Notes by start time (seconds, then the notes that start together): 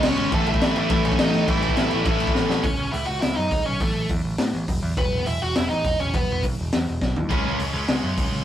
Already playing: C#3 G#3 C#4
0.02 C#2 C#3 G#3 C#4, snare, crash
0.06 C#4 C#5
0.17 G#1, crash
0.31 A1 A2 E3 A3 A4, kick, crash
0.35 A5
0.46 A1 E4 E5, crash
0.54 kick
0.61 A1 A2 E3 A3, snare, crash
0.76 A1 E4 E5, crash
0.90 A1 A2 E3 A3, kick, crash
1.04 A1 C#4 C#5, crash
1.12 kick
1.19 A1 A2 E3 A3 D#4 D#5, snare, crash
1.33 A1, crash
1.47 A1 A2 E3 A3 E4 E5, kick, crash
1.62 A1, crash
1.69 kick
1.77 A1 A2 E3 A3, snare, crash
1.91 A1, crash
2.05 A1 A2 E3 A3, kick, crash
2.20 A1, crash
2.27 kick
2.34 A1 A2 E3 A3, snare
2.49 A1, snare
2.63 C#2 C#4 C#5, kick, open hi-hat
2.78 C#2
2.92 C#2 E4 E5, open hi-hat
3.06 C#2 F#4 F#5
3.21 C#2 E4 E5, snare, open hi-hat
3.36 F#2 D#4 D#5
3.51 C#2, kick, open hi-hat
3.65 B1 C#4 C#5
3.80 A1 A3 A4, kick, open hi-hat
3.94 A1
4.09 E2, kick, open hi-hat
4.24 A1
4.38 A2, snare, open hi-hat
4.53 A1
4.68 E1, kick, open hi-hat
4.82 E2
4.97 E1 B3 B4, kick, open hi-hat
5.11 E1
5.26 E1 E4 E5, open hi-hat
5.42 E1 F#4 F#5
5.55 E1 E4 E5, snare, open hi-hat
5.69 A1 D#4 D#5
5.84 E1, kick, open hi-hat
5.99 E1 C#4 C#5
6.14 E1 B3 B4, kick, open hi-hat
6.31 E1
6.43 B1, kick, open hi-hat
6.59 E1
6.72 E2, snare, open hi-hat
6.88 E1
7.01 B1, kick, snare
7.16 D#2, floor tom
7.29 C#2 C#3 G#3 C#4, kick, crash
7.44 C#2 C#3 G#3 C#4
7.59 C#2, open hi-hat
7.73 C#2 C#3 G#3 C#4
7.88 C#2, snare, open hi-hat
8.03 F#2
8.17 C#2, kick, open hi-hat
8.31 C#2